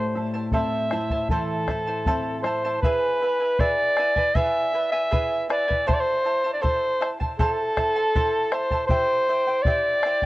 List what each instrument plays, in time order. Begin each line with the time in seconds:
Already playing: nylon-string guitar A2, charango E4 A4 C5 E5 A5, soprano saxophone C5
0.15 nylon-string guitar E4, charango E4 C5 E5 A5
0.34 charango E4 C5 A5
0.52 nylon-string guitar C4, charango E4 A4 C5 E5 A5, soprano saxophone E5, bombo low
0.91 charango E4 C5 E5 A5, nylon-string guitar E4, bombo rim
1.10 charango E4 C5 A5, bombo low
1.29 nylon-string guitar E3, charango E4 A4 C5 E5 A5, soprano saxophone A4, bombo low
1.68 nylon-string guitar E4, charango E4 C5 E5 A5, bombo rim, bombo low
1.87 charango E4 C5 A5
2.06 nylon-string guitar C4, charango E4 A4 C5 E5 A5, bombo low
2.43 nylon-string guitar E4, charango E4 C5 E5 A5, soprano saxophone C5, bombo rim
2.65 charango E4 C5 A5
2.82 charango E4 G#4 B4 E5 G#5, soprano saxophone B4, bombo low
3.22 charango E4 B4 E5 G#5
3.40 charango E4 B4 G#5
3.59 charango E4 G#4 B4 E5 G#5, soprano saxophone D5, bombo low
3.97 charango E4 B4 E5 G#5, bombo rim
4.16 charango E4 B4 G#5, bombo low
4.35 charango E4 G#4 B4 E5 G#5, soprano saxophone E5, bombo low
4.74 charango E4 B4 E5 G#5
4.92 charango E4 B4 G#5, soprano saxophone E5
5.11 charango E4 G#4 B4 E5 G#5, bombo low
5.49 charango E4 B4 E5 G#5, soprano saxophone D5, bombo rim
5.68 charango E4 B4 G#5, bombo low
5.87 charango E4 A4 C5 E5 A5, soprano saxophone C5, bombo low
5.94 soprano saxophone D5
6.00 soprano saxophone C5
6.24 charango E4 C5 E5 A5
6.44 charango E4 C5 A5
6.54 soprano saxophone D5
6.62 charango E4 A4 C5 E5 A5, soprano saxophone C5, bombo low
7.01 charango E4 C5 E5 A5, bombo rim
7.20 charango E4 C5 A5, bombo low
7.39 charango E4 A4 C5 E5 A5, soprano saxophone A4, bombo low
7.77 charango E4 C5 E5 A5, bombo rim, bombo low
7.96 charango E4 C5 A5
8.15 charango E4 A4 C5 E5 A5, bombo low
8.52 charango E4 C5 E5 A5, soprano saxophone C5, bombo rim
8.71 charango E4 C5 A5, bombo low
8.87 charango E4 G4 C5 E5 G5, soprano saxophone C5, bombo low
9.29 charango E4 C5 E5 G5
9.47 charango E4 C5 G5
9.62 charango G4 E5, soprano saxophone D5, bombo low
9.67 charango E4 C5 G5
10.03 charango E4 C5 E5 G5, bombo rim
10.22 bombo low